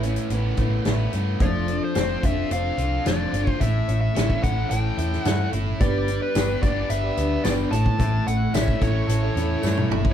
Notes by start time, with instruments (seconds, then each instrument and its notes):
Already playing: picked electric bass A1, overdriven electric guitar A2 A3
0.02 overdriven electric guitar C#4, steel-string acoustic guitar E4 B4, closed hi-hat
0.07 steel-string acoustic guitar C#4
0.16 closed hi-hat
0.30 picked electric bass A1, steel-string acoustic guitar A3 C#4 E4 B4, overdriven electric guitar B3, closed hi-hat
0.57 picked electric bass A1, overdriven electric guitar A3, steel-string acoustic guitar E4 B4, kick, closed hi-hat
0.62 steel-string acoustic guitar C#4
0.85 picked electric bass A1, steel-string acoustic guitar A3 C#4 E4 B4, overdriven electric guitar B3, snare, closed hi-hat
1.13 picked electric bass G2, overdriven electric guitar A3, steel-string acoustic guitar C#4 E4 B4, closed hi-hat
1.39 picked electric bass F1, tonewheel organ F3 C4 D4 A4, overdriven electric guitar F3, steel-string acoustic guitar F3 A3 D4 A4 C5, lead electric guitar D5, kick, closed hi-hat
1.68 steel-string acoustic guitar D4 A4 C5, closed hi-hat
1.84 lead electric guitar C5
1.94 picked electric bass F1, steel-string acoustic guitar F3 A3 D4 A4 C5, overdriven electric guitar C4, snare, closed hi-hat
2.23 picked electric bass F1, steel-string acoustic guitar D4 A4 C5, overdriven electric guitar F4, lead electric guitar E5, kick, closed hi-hat
2.51 picked electric bass F1, steel-string acoustic guitar A3 D4 A4 C5, overdriven electric guitar A4, lead electric guitar F5, closed hi-hat
2.77 picked electric bass C2, steel-string acoustic guitar D4 A4 C5, overdriven electric guitar F4, closed hi-hat
3.05 picked electric bass F1, overdriven electric guitar D3, steel-string acoustic guitar F3 A3 D4 A4 C5, lead electric guitar D5, snare, closed hi-hat
3.33 picked electric bass G1, steel-string acoustic guitar D4 A4 C5, overdriven electric guitar F4, closed hi-hat
3.47 kick
3.51 lead electric guitar C5
3.60 picked electric bass A1, overdriven electric guitar A2, tonewheel organ E3 A3 C#4, steel-string acoustic guitar A3 C#4 E4 C#5, lead electric guitar E5, kick, closed hi-hat
3.88 picked electric bass A1, steel-string acoustic guitar C#4 E4 C#5, closed hi-hat
4.01 lead electric guitar E5
4.15 picked electric bass A1, steel-string acoustic guitar A3 C#4 E4 C#5, overdriven electric guitar C#4, snare, closed hi-hat
4.30 kick
4.43 picked electric bass A1, steel-string acoustic guitar C#4 E4 C#5, overdriven electric guitar E4, lead electric guitar F#5, kick, closed hi-hat
4.70 picked electric bass A1, steel-string acoustic guitar A3 C#4 E4 C#5, overdriven electric guitar A4, lead electric guitar G5, closed hi-hat
4.97 picked electric bass E2, steel-string acoustic guitar C#4 E4 C#5, overdriven electric guitar E4, closed hi-hat
5.13 snare
5.24 picked electric bass G2, steel-string acoustic guitar A3 C#4 E4 C#5, overdriven electric guitar A3, lead electric guitar F#5, snare, closed hi-hat
5.52 picked electric bass G1, steel-string acoustic guitar C#4 E4 C#5, overdriven electric guitar E4, closed hi-hat
5.80 picked electric bass G1, overdriven electric guitar G3, steel-string acoustic guitar G3 B3 D4 G4 B4, tonewheel organ G3 B3 D4 B4, reed electric piano G4 B4 D5, lead electric guitar D5, kick, closed hi-hat
6.08 steel-string acoustic guitar D4 G4 B4, closed hi-hat
6.22 lead electric guitar B4
6.35 picked electric bass G1, steel-string acoustic guitar G3 B3 D4 G4 B4, overdriven electric guitar D4, snare, closed hi-hat, tambourine
6.62 picked electric bass G1, overdriven electric guitar B3, steel-string acoustic guitar D4 G4 B4, reed electric piano G4 B4 D5, lead electric guitar D5, kick, closed hi-hat
6.89 picked electric bass G1, steel-string acoustic guitar B3 D4 G4 B4, overdriven electric guitar B4, lead electric guitar E5, closed hi-hat
7.03 reed electric piano G4 B4 D5
7.17 picked electric bass D2, overdriven electric guitar B3, steel-string acoustic guitar D4 G4 B4, closed hi-hat
7.43 picked electric bass G1, overdriven electric guitar G3, steel-string acoustic guitar G3 B3 D4 G4 B4, lead electric guitar D5, snare, closed hi-hat, tambourine
7.70 picked electric bass A1, overdriven electric guitar A2, tonewheel organ E3 A3 C#4 A4, steel-string acoustic guitar C#4 E4 C#5, reed electric piano E4 A4 C#5, lead electric guitar A5, closed hi-hat
7.86 kick
7.98 picked electric bass A1, overdriven electric guitar A2, steel-string acoustic guitar A3 C#4 E4 C#5, kick, closed hi-hat
8.26 picked electric bass A1, steel-string acoustic guitar C#4 E4 C#5, lead electric guitar F#5, closed hi-hat
8.54 picked electric bass A1, steel-string acoustic guitar A3 C#4 E4 C#5, overdriven electric guitar C#4, lead electric guitar E5, snare, closed hi-hat, tambourine
8.68 kick
8.80 picked electric bass A1, steel-string acoustic guitar C#4 E4 C#5, reed electric piano E4 A4 C#5, overdriven electric guitar E4, lead electric guitar C#5, kick, closed hi-hat
9.07 picked electric bass A1, steel-string acoustic guitar A3 C#4 E4 C#5, overdriven electric guitar A4, closed hi-hat
9.23 reed electric piano E4 A4 C#5
9.35 picked electric bass E2, steel-string acoustic guitar C#4 E4 C#5, overdriven electric guitar E4, closed hi-hat
9.62 picked electric bass G2, overdriven electric guitar A3, steel-string acoustic guitar A3 C#4 E4 C#5, snare, tambourine
9.77 mid tom
9.89 picked electric bass G1, steel-string acoustic guitar C#4 E4 C#5, overdriven electric guitar E4, mid tom
10.05 kick